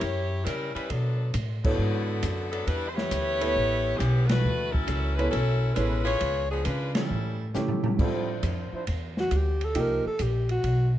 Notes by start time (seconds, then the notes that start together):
Already playing: E4 G4 C#5
0.01 F#2, kick, ride
0.44 C#3 G3 C#4 E4 A#4, kick, hi-hat pedal, ride
0.74 G3 C#4 E4 B4, muted upright bass stroke, ride
0.90 B2 F#3 B3 D4 A4, kick, ride
1.34 A2, kick, hi-hat pedal, ride
1.64 D3 B3 E4 F#4 A4 C#5, kick, crash
1.78 G#2
2.23 F#2, kick, hi-hat pedal, ride
2.52 F#3 B3 D4 A4, ride
2.67 E2 G3 D4 E4 B4, kick, ride
2.88 C5
2.95 B3 E4 G4 C#5, snare
3.11 D2, kick, hi-hat pedal, ride
3.41 B3 E4 A4 C#5, ride
3.56 A1, kick
3.97 B1 E3 B3 C#4 G4, kick, hi-hat pedal, ride
4.26 A3 E4 F#4 B4, snare, ride
4.44 D2
4.71 F#3 C#4 E4 A4, kick
4.88 C#2, kick, hi-hat pedal, ride
5.15 G#3 B3 C#4 E4 B4
5.19 A4 C#5, ride
5.30 B1 F#3 C#4 E4 A4, kick, ride
5.74 A1 G#3 B3 C#4 E4 A4 B4 C#5, kick, hi-hat pedal, ride
6.04 B3 F4 G#4 C#5, ride
6.20 C#2, kick, ride
6.51 F3 B3 D4 G#4
6.64 C#3 G#3 D4 F4 B4, kick, hi-hat pedal, ride
6.94 G3 C#4 E4 A4, snare, ride
7.11 A2
7.54 C#3 A3 C#4 E4 G4, snare, hi-hat pedal
7.68 floor tom
7.84 floor tom
7.98 A2 F3 G3 C4 D4 E4 F4 A4 C5, kick, crash
8.43 F2, kick, hi-hat pedal, ride
8.73 F3 D4 E4 C5, muted upright bass stroke
8.87 E2, kick, ride
9.17 F#4, snare
9.31 D2, kick, hi-hat pedal, ride
9.36 G4
9.61 A4, ride
9.74 C2 F3 A#3 D#4 G4, kick, ride
9.80 A#4
10.06 A4, muted upright bass stroke
10.19 A#1 G4, kick, hi-hat pedal, ride
10.49 F#4, ride
10.64 B1, kick, ride